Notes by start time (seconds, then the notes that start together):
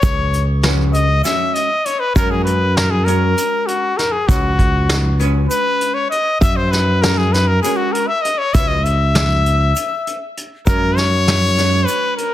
Already playing: C#5
0.03 C#2, kick, closed hi-hat, shaker
0.33 closed hi-hat, shaker
0.63 G#3 C#4 F#4 B4, snare, closed hi-hat
0.93 D#5, closed hi-hat, shaker
1.24 G#3 C#4 F#4 C#5 E5, snare, closed hi-hat, shaker
1.54 D#5, closed hi-hat
1.85 C#5, closed hi-hat
2.00 B4
2.15 F#2 G#3 C#4 F#4 A#4, kick, closed hi-hat, shaker
2.31 G#4
2.44 B4, closed hi-hat, shaker
2.76 A#4, snare, closed hi-hat
2.91 G#4
3.05 G#3 C#4 F#4 A#4, closed hi-hat
3.09 shaker
3.38 closed hi-hat, shaker
3.66 F#4, closed hi-hat
3.98 A#4, snare, closed hi-hat
4.12 G#4
4.28 C#2 G#3 C#4 F#4 B4, kick, closed hi-hat, shaker
4.59 kick, closed hi-hat
4.89 snare, closed hi-hat, shaker
5.19 G#3 C#4 F#4 B4, closed hi-hat, shaker
5.49 B4, closed hi-hat, shaker
5.81 closed hi-hat, shaker
5.94 C#5
6.10 D#5, closed hi-hat
6.41 F#2 E5, kick, closed hi-hat, shaker
6.56 C5
6.71 B4, snare, closed hi-hat, shaker
7.02 G#3 C#4 F#4 A#4, snare, closed hi-hat
7.18 G#4
7.33 B4, snare, closed hi-hat, shaker
7.47 A#4
7.62 G#3 C#4 F#4 G#4 A#4, closed hi-hat, shaker
7.76 F#4
7.93 A#4, closed hi-hat
8.07 E5
8.22 D#5, closed hi-hat
8.38 C#5
8.54 C#2 G#3 C#4 F#4 B4 E5, kick, closed hi-hat, shaker
8.68 D#5
8.84 E5, closed hi-hat, shaker
9.15 snare, closed hi-hat
9.46 closed hi-hat, shaker
9.76 closed hi-hat, shaker
10.07 closed hi-hat
10.37 closed hi-hat
10.66 F#2 G#3 C#4 F#4 A#4, kick, closed hi-hat, shaker
10.97 C#5, snare, closed hi-hat, shaker
11.28 snare, closed hi-hat
11.57 G#3 C#4 F#4 C#5, snare, closed hi-hat, shaker
11.86 B4, closed hi-hat, shaker
12.17 A#4, closed hi-hat